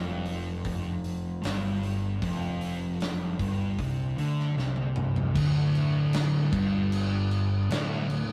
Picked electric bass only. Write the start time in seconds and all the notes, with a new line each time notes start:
Already playing: F1
1.45 G1
2.22 F1
3.40 G1
3.79 C2
4.18 D2
4.58 C2
5.36 D1
6.53 G1
7.70 D1
8.10 D1